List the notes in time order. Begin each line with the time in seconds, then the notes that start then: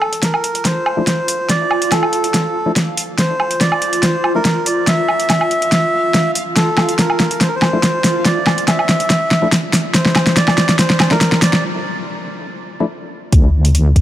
Already playing: F4 A4
0.02 low woodblock
0.13 closed hi-hat
0.23 A#4, kick, snare, closed hi-hat
0.34 low woodblock
0.44 closed hi-hat
0.55 closed hi-hat
0.65 C5, kick, snare, closed hi-hat
0.86 low woodblock
0.97 F3 A3 D4 E4
1.07 C5, kick, snare, closed hi-hat
1.28 open hi-hat
1.49 D5, kick, snare, closed hi-hat
1.71 low woodblock
1.82 closed hi-hat
1.92 A4, kick, snare, closed hi-hat, low woodblock
2.03 low woodblock
2.13 closed hi-hat
2.24 closed hi-hat
2.34 kick, snare, closed hi-hat
2.66 F3 A3 D4 E4
2.76 kick, snare, closed hi-hat
2.97 open hi-hat
3.18 C5, kick, snare, closed hi-hat
3.40 low woodblock
3.51 closed hi-hat
3.61 D5, kick, snare, closed hi-hat
3.72 low woodblock
3.82 closed hi-hat
3.93 closed hi-hat
4.03 C5, kick, snare, closed hi-hat
4.24 low woodblock
4.35 F3 A3 D4 E4 A#4
4.45 kick, snare, closed hi-hat
4.66 D5, open hi-hat
4.87 E5, kick, snare, closed hi-hat
5.09 low woodblock
5.20 closed hi-hat
5.30 kick, snare, closed hi-hat, low woodblock
5.41 low woodblock
5.51 closed hi-hat
5.62 closed hi-hat
5.72 kick, snare, closed hi-hat
6.14 kick, snare, closed hi-hat
6.35 open hi-hat
6.56 A4, kick, snare, closed hi-hat
6.78 snare, low woodblock
6.89 closed hi-hat
6.99 A#4, kick, snare, closed hi-hat
7.10 low woodblock
7.20 snare, closed hi-hat
7.31 closed hi-hat
7.41 C5, kick, snare, closed hi-hat
7.48 A#4
7.56 C5
7.62 snare, low woodblock
7.73 F3 A3 D4 E4
7.83 kick, snare, closed hi-hat
8.04 snare, open hi-hat
8.25 D5, kick, snare, closed hi-hat
8.47 snare, low woodblock
8.58 closed hi-hat
8.68 E5, kick, snare, closed hi-hat, low woodblock
8.79 low woodblock
8.89 snare, closed hi-hat
9.00 closed hi-hat
9.10 kick, snare, closed hi-hat
9.31 snare
9.42 F3 A3 D4 E4
9.52 kick, snare, closed hi-hat
9.73 snare, open hi-hat
9.94 C5, kick, snare, closed hi-hat
10.06 snare
10.16 snare, low woodblock
10.27 snare, closed hi-hat
10.37 D5, kick, snare, closed hi-hat
10.48 snare, low woodblock
10.58 snare, closed hi-hat
10.69 snare, closed hi-hat
10.79 C5, kick, snare, closed hi-hat
10.90 snare
11.00 snare, low woodblock
11.11 F3 A3 D4 E4 A#4, snare
11.21 kick, snare, closed hi-hat
11.32 snare
11.42 D5, snare, open hi-hat
11.53 snare
12.80 F3 A3 D4 E4
13.33 D2, kick, closed hi-hat
13.65 closed hi-hat
13.75 closed hi-hat
13.96 D2, kick, closed hi-hat